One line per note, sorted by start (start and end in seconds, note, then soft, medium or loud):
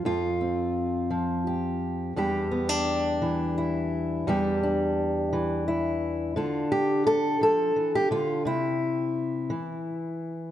0.05 2.13 F2 medium
0.05 1.47 F4 medium
0.41 2.13 C4 soft
1.10 2.12 F3 medium
1.47 2.18 G4 soft
2.16 4.26 E2 medium
2.16 4.26 G3 medium
2.16 2.51 D4 medium
2.16 3.57 G4 medium
2.51 2.69 B3 soft
2.69 4.27 D4 soft
3.22 4.32 E3 medium
3.58 4.29 E4 medium
4.27 6.37 E2 medium
4.27 6.37 G3 medium
4.27 4.63 D4 medium
4.27 5.67 G4 medium
4.63 6.37 D4 medium
5.33 6.36 E3 medium
5.68 6.37 E4 medium
6.36 7.41 D3 medium
6.36 8.41 D4 medium
6.36 6.71 F4 soft
6.72 7.06 G4 medium
7.07 7.41 A4 loud
7.41 7.76 F3 medium
7.41 7.94 A4 loud
7.76 8.10 E3 medium
7.95 8.11 G4 loud
8.11 8.46 D3 medium
8.11 8.46 F4 medium
8.45 9.50 C3 medium
8.45 10.51 E4 medium
9.50 10.51 E3 medium